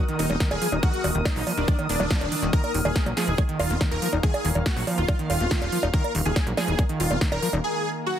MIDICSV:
0, 0, Header, 1, 7, 480
1, 0, Start_track
1, 0, Tempo, 425532
1, 935, Time_signature, 4, 2, 24, 8
1, 9242, End_track
2, 0, Start_track
2, 0, Title_t, "Ambient pad"
2, 0, Program_c, 0, 92
2, 0, Note_on_c, 0, 58, 84
2, 0, Note_on_c, 0, 70, 91
2, 0, Note_on_c, 0, 87, 88
2, 3441, Note_on_c, 0, 77, 89
2, 3466, Note_off_c, 0, 87, 0
2, 8615, Note_off_c, 0, 58, 0
2, 8615, Note_off_c, 0, 70, 0
2, 8639, Note_off_c, 0, 77, 0
2, 9242, End_track
3, 0, Start_track
3, 0, Title_t, "Supersaw synth"
3, 0, Program_c, 1, 81
3, 215, Note_on_c, 1, 63, 102
3, 427, Note_off_c, 1, 63, 0
3, 575, Note_on_c, 1, 68, 101
3, 787, Note_off_c, 1, 68, 0
3, 935, Note_on_c, 1, 66, 93
3, 1218, Note_off_c, 1, 66, 0
3, 1415, Note_on_c, 1, 63, 99
3, 1627, Note_off_c, 1, 63, 0
3, 1775, Note_on_c, 1, 62, 91
3, 1987, Note_off_c, 1, 62, 0
3, 2135, Note_on_c, 1, 62, 106
3, 2759, Note_off_c, 1, 62, 0
3, 2855, Note_on_c, 1, 70, 100
3, 3067, Note_off_c, 1, 70, 0
3, 3215, Note_on_c, 1, 68, 100
3, 3427, Note_off_c, 1, 68, 0
3, 3574, Note_on_c, 1, 68, 100
3, 3857, Note_off_c, 1, 68, 0
3, 4055, Note_on_c, 1, 65, 101
3, 4267, Note_off_c, 1, 65, 0
3, 4415, Note_on_c, 1, 70, 97
3, 4627, Note_off_c, 1, 70, 0
3, 4775, Note_on_c, 1, 68, 92
3, 5058, Note_off_c, 1, 68, 0
3, 5255, Note_on_c, 1, 66, 94
3, 5467, Note_off_c, 1, 66, 0
3, 5614, Note_on_c, 1, 65, 95
3, 5827, Note_off_c, 1, 65, 0
3, 5975, Note_on_c, 1, 65, 98
3, 6599, Note_off_c, 1, 65, 0
3, 6695, Note_on_c, 1, 70, 98
3, 6907, Note_off_c, 1, 70, 0
3, 7055, Note_on_c, 1, 68, 99
3, 7267, Note_off_c, 1, 68, 0
3, 7415, Note_on_c, 1, 68, 100
3, 7698, Note_off_c, 1, 68, 0
3, 7896, Note_on_c, 1, 65, 102
3, 8107, Note_off_c, 1, 65, 0
3, 8256, Note_on_c, 1, 70, 102
3, 8467, Note_off_c, 1, 70, 0
3, 8616, Note_on_c, 1, 68, 91
3, 8898, Note_off_c, 1, 68, 0
3, 9096, Note_on_c, 1, 66, 97
3, 9242, Note_off_c, 1, 66, 0
3, 9242, End_track
4, 0, Start_track
4, 0, Title_t, "Synth drone"
4, 0, Program_c, 2, 95
4, 0, Note_on_c, 2, 51, 75
4, 0, Note_on_c, 2, 70, 71
4, 8615, Note_off_c, 2, 51, 0
4, 8615, Note_off_c, 2, 70, 0
4, 9242, End_track
5, 0, Start_track
5, 0, Title_t, "Acid bass"
5, 0, Program_c, 3, 38
5, 95, Note_on_c, 3, 51, 101
5, 335, Note_on_c, 3, 63, 78
5, 352, Note_off_c, 3, 51, 0
5, 403, Note_off_c, 3, 63, 0
5, 455, Note_on_c, 3, 51, 86
5, 557, Note_off_c, 3, 51, 0
5, 695, Note_on_c, 3, 53, 104
5, 763, Note_off_c, 3, 53, 0
5, 815, Note_on_c, 3, 63, 75
5, 883, Note_off_c, 3, 63, 0
5, 935, Note_on_c, 3, 51, 108
5, 1037, Note_off_c, 3, 51, 0
5, 1175, Note_on_c, 3, 51, 79
5, 1243, Note_off_c, 3, 51, 0
5, 1295, Note_on_c, 3, 51, 79
5, 1336, Note_off_c, 3, 51, 0
5, 1535, Note_on_c, 3, 54, 74
5, 1603, Note_off_c, 3, 54, 0
5, 1655, Note_on_c, 3, 53, 99
5, 1723, Note_off_c, 3, 53, 0
5, 1895, Note_on_c, 3, 51, 82
5, 1963, Note_off_c, 3, 51, 0
5, 2015, Note_on_c, 3, 51, 98
5, 2117, Note_off_c, 3, 51, 0
5, 2255, Note_on_c, 3, 54, 106
5, 2296, Note_off_c, 3, 54, 0
5, 2375, Note_on_c, 3, 53, 105
5, 2477, Note_off_c, 3, 53, 0
5, 2615, Note_on_c, 3, 51, 78
5, 2656, Note_off_c, 3, 51, 0
5, 2735, Note_on_c, 3, 51, 101
5, 2836, Note_off_c, 3, 51, 0
5, 2855, Note_on_c, 3, 51, 107
5, 2956, Note_off_c, 3, 51, 0
5, 3095, Note_on_c, 3, 51, 80
5, 3163, Note_off_c, 3, 51, 0
5, 3215, Note_on_c, 3, 51, 77
5, 3256, Note_off_c, 3, 51, 0
5, 3455, Note_on_c, 3, 54, 74
5, 3523, Note_off_c, 3, 54, 0
5, 3575, Note_on_c, 3, 53, 102
5, 3695, Note_on_c, 3, 51, 100
5, 3712, Note_off_c, 3, 53, 0
5, 3763, Note_off_c, 3, 51, 0
5, 3815, Note_on_c, 3, 51, 82
5, 3883, Note_off_c, 3, 51, 0
5, 3935, Note_on_c, 3, 51, 96
5, 4175, Note_on_c, 3, 63, 76
5, 4192, Note_off_c, 3, 51, 0
5, 4243, Note_off_c, 3, 63, 0
5, 4295, Note_on_c, 3, 51, 86
5, 4397, Note_off_c, 3, 51, 0
5, 4535, Note_on_c, 3, 53, 105
5, 4603, Note_off_c, 3, 53, 0
5, 4655, Note_on_c, 3, 63, 77
5, 4723, Note_off_c, 3, 63, 0
5, 4775, Note_on_c, 3, 51, 107
5, 4876, Note_off_c, 3, 51, 0
5, 5015, Note_on_c, 3, 51, 78
5, 5083, Note_off_c, 3, 51, 0
5, 5135, Note_on_c, 3, 51, 79
5, 5176, Note_off_c, 3, 51, 0
5, 5375, Note_on_c, 3, 54, 75
5, 5443, Note_off_c, 3, 54, 0
5, 5495, Note_on_c, 3, 53, 99
5, 5615, Note_on_c, 3, 51, 100
5, 5632, Note_off_c, 3, 53, 0
5, 5683, Note_off_c, 3, 51, 0
5, 5735, Note_on_c, 3, 51, 85
5, 5803, Note_off_c, 3, 51, 0
5, 5855, Note_on_c, 3, 51, 101
5, 6095, Note_on_c, 3, 63, 78
5, 6112, Note_off_c, 3, 51, 0
5, 6163, Note_off_c, 3, 63, 0
5, 6215, Note_on_c, 3, 51, 90
5, 6317, Note_off_c, 3, 51, 0
5, 6455, Note_on_c, 3, 53, 103
5, 6523, Note_off_c, 3, 53, 0
5, 6575, Note_on_c, 3, 63, 76
5, 6643, Note_off_c, 3, 63, 0
5, 6696, Note_on_c, 3, 51, 107
5, 6797, Note_off_c, 3, 51, 0
5, 6936, Note_on_c, 3, 51, 75
5, 7003, Note_off_c, 3, 51, 0
5, 7056, Note_on_c, 3, 51, 81
5, 7096, Note_off_c, 3, 51, 0
5, 7296, Note_on_c, 3, 54, 74
5, 7363, Note_off_c, 3, 54, 0
5, 7416, Note_on_c, 3, 53, 103
5, 7536, Note_on_c, 3, 51, 103
5, 7553, Note_off_c, 3, 53, 0
5, 7603, Note_off_c, 3, 51, 0
5, 7656, Note_on_c, 3, 51, 84
5, 7723, Note_off_c, 3, 51, 0
5, 7776, Note_on_c, 3, 51, 101
5, 8016, Note_on_c, 3, 63, 77
5, 8033, Note_off_c, 3, 51, 0
5, 8083, Note_off_c, 3, 63, 0
5, 8135, Note_on_c, 3, 51, 91
5, 8237, Note_off_c, 3, 51, 0
5, 8375, Note_on_c, 3, 53, 100
5, 8443, Note_off_c, 3, 53, 0
5, 8496, Note_on_c, 3, 63, 77
5, 8563, Note_off_c, 3, 63, 0
5, 9242, End_track
6, 0, Start_track
6, 0, Title_t, "Analog synth bass"
6, 0, Program_c, 4, 38
6, 215, Note_on_c, 4, 27, 94
6, 289, Note_off_c, 4, 27, 0
6, 335, Note_on_c, 4, 27, 88
6, 409, Note_off_c, 4, 27, 0
6, 575, Note_on_c, 4, 27, 73
6, 649, Note_off_c, 4, 27, 0
6, 815, Note_on_c, 4, 27, 82
6, 889, Note_off_c, 4, 27, 0
6, 1175, Note_on_c, 4, 27, 96
6, 1249, Note_off_c, 4, 27, 0
6, 1295, Note_on_c, 4, 27, 88
6, 1369, Note_off_c, 4, 27, 0
6, 1536, Note_on_c, 4, 34, 80
6, 1609, Note_off_c, 4, 34, 0
6, 1776, Note_on_c, 4, 27, 78
6, 1849, Note_off_c, 4, 27, 0
6, 2136, Note_on_c, 4, 27, 97
6, 2209, Note_off_c, 4, 27, 0
6, 2256, Note_on_c, 4, 27, 83
6, 2329, Note_off_c, 4, 27, 0
6, 2496, Note_on_c, 4, 27, 74
6, 2569, Note_off_c, 4, 27, 0
6, 2736, Note_on_c, 4, 27, 84
6, 2810, Note_off_c, 4, 27, 0
6, 3095, Note_on_c, 4, 27, 92
6, 3169, Note_off_c, 4, 27, 0
6, 3216, Note_on_c, 4, 27, 88
6, 3289, Note_off_c, 4, 27, 0
6, 3455, Note_on_c, 4, 34, 80
6, 3529, Note_off_c, 4, 34, 0
6, 3695, Note_on_c, 4, 27, 82
6, 3769, Note_off_c, 4, 27, 0
6, 4055, Note_on_c, 4, 27, 97
6, 4129, Note_off_c, 4, 27, 0
6, 4175, Note_on_c, 4, 27, 85
6, 4249, Note_off_c, 4, 27, 0
6, 4415, Note_on_c, 4, 27, 72
6, 4489, Note_off_c, 4, 27, 0
6, 4655, Note_on_c, 4, 27, 82
6, 4729, Note_off_c, 4, 27, 0
6, 5015, Note_on_c, 4, 27, 95
6, 5089, Note_off_c, 4, 27, 0
6, 5135, Note_on_c, 4, 27, 87
6, 5209, Note_off_c, 4, 27, 0
6, 5375, Note_on_c, 4, 34, 81
6, 5449, Note_off_c, 4, 34, 0
6, 5615, Note_on_c, 4, 27, 82
6, 5689, Note_off_c, 4, 27, 0
6, 5975, Note_on_c, 4, 27, 97
6, 6049, Note_off_c, 4, 27, 0
6, 6095, Note_on_c, 4, 27, 85
6, 6169, Note_off_c, 4, 27, 0
6, 6335, Note_on_c, 4, 27, 72
6, 6409, Note_off_c, 4, 27, 0
6, 6576, Note_on_c, 4, 27, 81
6, 6649, Note_off_c, 4, 27, 0
6, 6935, Note_on_c, 4, 27, 94
6, 7009, Note_off_c, 4, 27, 0
6, 7055, Note_on_c, 4, 27, 85
6, 7129, Note_off_c, 4, 27, 0
6, 7295, Note_on_c, 4, 34, 79
6, 7369, Note_off_c, 4, 34, 0
6, 7535, Note_on_c, 4, 27, 82
6, 7609, Note_off_c, 4, 27, 0
6, 7895, Note_on_c, 4, 27, 97
6, 7969, Note_off_c, 4, 27, 0
6, 8015, Note_on_c, 4, 27, 84
6, 8089, Note_off_c, 4, 27, 0
6, 8256, Note_on_c, 4, 27, 71
6, 8329, Note_off_c, 4, 27, 0
6, 8495, Note_on_c, 4, 27, 87
6, 8569, Note_off_c, 4, 27, 0
6, 9242, End_track
7, 0, Start_track
7, 0, Title_t, "Drums"
7, 95, Note_on_c, 9, 42, 40
7, 208, Note_off_c, 9, 42, 0
7, 215, Note_on_c, 9, 46, 105
7, 328, Note_off_c, 9, 46, 0
7, 335, Note_on_c, 9, 42, 39
7, 335, Note_on_c, 9, 60, 39
7, 448, Note_off_c, 9, 42, 0
7, 448, Note_off_c, 9, 60, 0
7, 455, Note_on_c, 9, 36, 118
7, 455, Note_on_c, 9, 38, 121
7, 455, Note_on_c, 9, 42, 62
7, 568, Note_off_c, 9, 36, 0
7, 568, Note_off_c, 9, 38, 0
7, 568, Note_off_c, 9, 42, 0
7, 575, Note_on_c, 9, 42, 38
7, 575, Note_on_c, 9, 60, 77
7, 688, Note_off_c, 9, 42, 0
7, 688, Note_off_c, 9, 60, 0
7, 695, Note_on_c, 9, 46, 114
7, 808, Note_off_c, 9, 46, 0
7, 815, Note_on_c, 9, 42, 37
7, 815, Note_on_c, 9, 60, 36
7, 928, Note_off_c, 9, 42, 0
7, 928, Note_off_c, 9, 60, 0
7, 935, Note_on_c, 9, 36, 119
7, 935, Note_on_c, 9, 42, 61
7, 1048, Note_off_c, 9, 36, 0
7, 1048, Note_off_c, 9, 42, 0
7, 1055, Note_on_c, 9, 42, 40
7, 1168, Note_off_c, 9, 42, 0
7, 1175, Note_on_c, 9, 46, 105
7, 1175, Note_on_c, 9, 60, 37
7, 1288, Note_off_c, 9, 46, 0
7, 1288, Note_off_c, 9, 60, 0
7, 1295, Note_on_c, 9, 42, 35
7, 1408, Note_off_c, 9, 42, 0
7, 1415, Note_on_c, 9, 36, 127
7, 1415, Note_on_c, 9, 38, 115
7, 1415, Note_on_c, 9, 42, 62
7, 1415, Note_on_c, 9, 60, 77
7, 1528, Note_off_c, 9, 36, 0
7, 1528, Note_off_c, 9, 38, 0
7, 1528, Note_off_c, 9, 42, 0
7, 1528, Note_off_c, 9, 60, 0
7, 1535, Note_on_c, 9, 46, 69
7, 1648, Note_off_c, 9, 46, 0
7, 1655, Note_on_c, 9, 46, 111
7, 1655, Note_on_c, 9, 60, 38
7, 1768, Note_off_c, 9, 46, 0
7, 1768, Note_off_c, 9, 60, 0
7, 1775, Note_on_c, 9, 42, 37
7, 1888, Note_off_c, 9, 42, 0
7, 1895, Note_on_c, 9, 36, 123
7, 1895, Note_on_c, 9, 42, 63
7, 2008, Note_off_c, 9, 36, 0
7, 2008, Note_off_c, 9, 42, 0
7, 2015, Note_on_c, 9, 42, 37
7, 2015, Note_on_c, 9, 60, 39
7, 2128, Note_off_c, 9, 42, 0
7, 2128, Note_off_c, 9, 60, 0
7, 2135, Note_on_c, 9, 46, 112
7, 2248, Note_off_c, 9, 46, 0
7, 2255, Note_on_c, 9, 42, 41
7, 2255, Note_on_c, 9, 60, 78
7, 2368, Note_off_c, 9, 42, 0
7, 2368, Note_off_c, 9, 60, 0
7, 2375, Note_on_c, 9, 36, 121
7, 2375, Note_on_c, 9, 38, 118
7, 2375, Note_on_c, 9, 42, 64
7, 2488, Note_off_c, 9, 36, 0
7, 2488, Note_off_c, 9, 38, 0
7, 2488, Note_off_c, 9, 42, 0
7, 2495, Note_on_c, 9, 42, 38
7, 2495, Note_on_c, 9, 60, 38
7, 2608, Note_off_c, 9, 42, 0
7, 2608, Note_off_c, 9, 60, 0
7, 2615, Note_on_c, 9, 46, 109
7, 2728, Note_off_c, 9, 46, 0
7, 2735, Note_on_c, 9, 42, 37
7, 2848, Note_off_c, 9, 42, 0
7, 2855, Note_on_c, 9, 36, 116
7, 2855, Note_on_c, 9, 42, 61
7, 2968, Note_off_c, 9, 36, 0
7, 2968, Note_off_c, 9, 42, 0
7, 2975, Note_on_c, 9, 42, 40
7, 2975, Note_on_c, 9, 60, 42
7, 3088, Note_off_c, 9, 42, 0
7, 3088, Note_off_c, 9, 60, 0
7, 3095, Note_on_c, 9, 46, 107
7, 3208, Note_off_c, 9, 46, 0
7, 3215, Note_on_c, 9, 42, 36
7, 3215, Note_on_c, 9, 60, 74
7, 3328, Note_off_c, 9, 42, 0
7, 3328, Note_off_c, 9, 60, 0
7, 3335, Note_on_c, 9, 36, 126
7, 3335, Note_on_c, 9, 38, 108
7, 3335, Note_on_c, 9, 42, 63
7, 3448, Note_off_c, 9, 36, 0
7, 3448, Note_off_c, 9, 38, 0
7, 3448, Note_off_c, 9, 42, 0
7, 3455, Note_on_c, 9, 42, 41
7, 3455, Note_on_c, 9, 60, 42
7, 3568, Note_off_c, 9, 42, 0
7, 3568, Note_off_c, 9, 60, 0
7, 3575, Note_on_c, 9, 38, 58
7, 3575, Note_on_c, 9, 46, 99
7, 3688, Note_off_c, 9, 38, 0
7, 3688, Note_off_c, 9, 46, 0
7, 3695, Note_on_c, 9, 42, 36
7, 3808, Note_off_c, 9, 42, 0
7, 3815, Note_on_c, 9, 36, 118
7, 3815, Note_on_c, 9, 42, 63
7, 3815, Note_on_c, 9, 60, 40
7, 3928, Note_off_c, 9, 36, 0
7, 3928, Note_off_c, 9, 42, 0
7, 3928, Note_off_c, 9, 60, 0
7, 3935, Note_on_c, 9, 42, 38
7, 4048, Note_off_c, 9, 42, 0
7, 4055, Note_on_c, 9, 46, 103
7, 4055, Note_on_c, 9, 60, 85
7, 4168, Note_off_c, 9, 46, 0
7, 4168, Note_off_c, 9, 60, 0
7, 4175, Note_on_c, 9, 42, 40
7, 4288, Note_off_c, 9, 42, 0
7, 4295, Note_on_c, 9, 36, 122
7, 4295, Note_on_c, 9, 38, 116
7, 4295, Note_on_c, 9, 42, 65
7, 4295, Note_on_c, 9, 60, 41
7, 4408, Note_off_c, 9, 36, 0
7, 4408, Note_off_c, 9, 38, 0
7, 4408, Note_off_c, 9, 42, 0
7, 4408, Note_off_c, 9, 60, 0
7, 4416, Note_on_c, 9, 42, 39
7, 4528, Note_off_c, 9, 42, 0
7, 4535, Note_on_c, 9, 46, 101
7, 4648, Note_off_c, 9, 46, 0
7, 4655, Note_on_c, 9, 42, 37
7, 4655, Note_on_c, 9, 60, 41
7, 4768, Note_off_c, 9, 42, 0
7, 4768, Note_off_c, 9, 60, 0
7, 4775, Note_on_c, 9, 36, 110
7, 4775, Note_on_c, 9, 42, 68
7, 4888, Note_off_c, 9, 36, 0
7, 4888, Note_off_c, 9, 42, 0
7, 4896, Note_on_c, 9, 42, 41
7, 4896, Note_on_c, 9, 60, 83
7, 5009, Note_off_c, 9, 42, 0
7, 5009, Note_off_c, 9, 60, 0
7, 5015, Note_on_c, 9, 46, 99
7, 5128, Note_off_c, 9, 46, 0
7, 5136, Note_on_c, 9, 42, 37
7, 5136, Note_on_c, 9, 60, 40
7, 5248, Note_off_c, 9, 42, 0
7, 5248, Note_off_c, 9, 60, 0
7, 5255, Note_on_c, 9, 36, 118
7, 5256, Note_on_c, 9, 38, 115
7, 5256, Note_on_c, 9, 42, 69
7, 5368, Note_off_c, 9, 36, 0
7, 5368, Note_off_c, 9, 38, 0
7, 5368, Note_off_c, 9, 42, 0
7, 5376, Note_on_c, 9, 46, 64
7, 5488, Note_off_c, 9, 46, 0
7, 5496, Note_on_c, 9, 46, 103
7, 5496, Note_on_c, 9, 60, 39
7, 5608, Note_off_c, 9, 46, 0
7, 5608, Note_off_c, 9, 60, 0
7, 5616, Note_on_c, 9, 42, 38
7, 5728, Note_off_c, 9, 42, 0
7, 5735, Note_on_c, 9, 36, 113
7, 5736, Note_on_c, 9, 42, 67
7, 5736, Note_on_c, 9, 60, 82
7, 5848, Note_off_c, 9, 36, 0
7, 5848, Note_off_c, 9, 42, 0
7, 5848, Note_off_c, 9, 60, 0
7, 5856, Note_on_c, 9, 42, 39
7, 5968, Note_off_c, 9, 42, 0
7, 5976, Note_on_c, 9, 46, 106
7, 5976, Note_on_c, 9, 60, 41
7, 6088, Note_off_c, 9, 46, 0
7, 6088, Note_off_c, 9, 60, 0
7, 6095, Note_on_c, 9, 42, 41
7, 6208, Note_off_c, 9, 42, 0
7, 6215, Note_on_c, 9, 36, 106
7, 6216, Note_on_c, 9, 38, 117
7, 6216, Note_on_c, 9, 42, 68
7, 6328, Note_off_c, 9, 36, 0
7, 6328, Note_off_c, 9, 38, 0
7, 6328, Note_off_c, 9, 42, 0
7, 6335, Note_on_c, 9, 42, 40
7, 6335, Note_on_c, 9, 60, 40
7, 6448, Note_off_c, 9, 42, 0
7, 6448, Note_off_c, 9, 60, 0
7, 6455, Note_on_c, 9, 46, 94
7, 6568, Note_off_c, 9, 46, 0
7, 6575, Note_on_c, 9, 42, 39
7, 6575, Note_on_c, 9, 60, 81
7, 6688, Note_off_c, 9, 42, 0
7, 6688, Note_off_c, 9, 60, 0
7, 6695, Note_on_c, 9, 36, 109
7, 6695, Note_on_c, 9, 42, 65
7, 6808, Note_off_c, 9, 36, 0
7, 6808, Note_off_c, 9, 42, 0
7, 6815, Note_on_c, 9, 42, 42
7, 6815, Note_on_c, 9, 60, 43
7, 6928, Note_off_c, 9, 42, 0
7, 6928, Note_off_c, 9, 60, 0
7, 6935, Note_on_c, 9, 46, 105
7, 7048, Note_off_c, 9, 46, 0
7, 7055, Note_on_c, 9, 42, 39
7, 7168, Note_off_c, 9, 42, 0
7, 7175, Note_on_c, 9, 36, 113
7, 7175, Note_on_c, 9, 38, 114
7, 7175, Note_on_c, 9, 42, 72
7, 7175, Note_on_c, 9, 60, 41
7, 7288, Note_off_c, 9, 36, 0
7, 7288, Note_off_c, 9, 38, 0
7, 7288, Note_off_c, 9, 42, 0
7, 7288, Note_off_c, 9, 60, 0
7, 7295, Note_on_c, 9, 42, 43
7, 7408, Note_off_c, 9, 42, 0
7, 7415, Note_on_c, 9, 38, 57
7, 7415, Note_on_c, 9, 46, 100
7, 7415, Note_on_c, 9, 60, 87
7, 7528, Note_off_c, 9, 38, 0
7, 7528, Note_off_c, 9, 46, 0
7, 7528, Note_off_c, 9, 60, 0
7, 7535, Note_on_c, 9, 42, 40
7, 7648, Note_off_c, 9, 42, 0
7, 7655, Note_on_c, 9, 42, 66
7, 7655, Note_on_c, 9, 60, 43
7, 7656, Note_on_c, 9, 36, 111
7, 7768, Note_off_c, 9, 36, 0
7, 7768, Note_off_c, 9, 42, 0
7, 7768, Note_off_c, 9, 60, 0
7, 7775, Note_on_c, 9, 42, 42
7, 7888, Note_off_c, 9, 42, 0
7, 7895, Note_on_c, 9, 46, 103
7, 8008, Note_off_c, 9, 46, 0
7, 8015, Note_on_c, 9, 42, 43
7, 8015, Note_on_c, 9, 60, 45
7, 8128, Note_off_c, 9, 42, 0
7, 8128, Note_off_c, 9, 60, 0
7, 8135, Note_on_c, 9, 36, 108
7, 8135, Note_on_c, 9, 38, 119
7, 8135, Note_on_c, 9, 42, 65
7, 8248, Note_off_c, 9, 36, 0
7, 8248, Note_off_c, 9, 38, 0
7, 8248, Note_off_c, 9, 42, 0
7, 8255, Note_on_c, 9, 42, 43
7, 8255, Note_on_c, 9, 60, 87
7, 8368, Note_off_c, 9, 42, 0
7, 8368, Note_off_c, 9, 60, 0
7, 8375, Note_on_c, 9, 46, 99
7, 8488, Note_off_c, 9, 46, 0
7, 8496, Note_on_c, 9, 42, 41
7, 8496, Note_on_c, 9, 60, 39
7, 8608, Note_off_c, 9, 42, 0
7, 8608, Note_off_c, 9, 60, 0
7, 9242, End_track
0, 0, End_of_file